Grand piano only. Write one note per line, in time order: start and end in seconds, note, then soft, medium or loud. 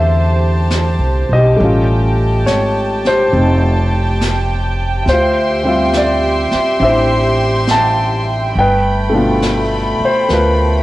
0.00 1.60 D3 soft
0.00 1.52 G3 soft
0.00 1.55 A3 soft
0.00 1.59 C4 medium
0.00 1.61 E4 soft
0.00 1.60 A4 medium
0.00 1.58 C5 soft
0.00 1.60 E5 medium
1.33 3.02 G4 medium
1.33 2.51 D#5 medium
1.54 5.04 G3 soft
1.54 5.06 A3 soft
1.60 5.07 C#4 soft
1.64 5.09 F4 medium
2.46 3.06 C#5 medium
3.07 4.76 G4 medium
3.07 4.76 C5 medium
3.32 5.06 C4 soft
3.32 5.07 D#4 soft
5.09 5.67 F4 medium
5.09 5.97 C5 medium
5.63 8.53 G3 soft
5.63 6.78 C4 soft
5.63 6.81 E5 soft
5.69 8.56 F4 medium
5.97 6.78 D5 medium
6.80 8.54 C4 soft
6.80 8.54 D4 soft
6.80 8.55 E4 soft
6.80 7.64 E5 medium
6.84 8.52 C5 medium
7.71 8.58 A5 medium
8.59 10.27 B4 medium
8.59 10.06 G5 medium
9.09 10.83 B2 soft
9.09 10.83 A3 soft
9.14 10.83 D4 soft
9.14 10.32 F4 medium
10.05 10.27 C5 medium
10.29 10.31 A#4 soft
10.33 10.83 F4 soft
10.33 10.83 B4 medium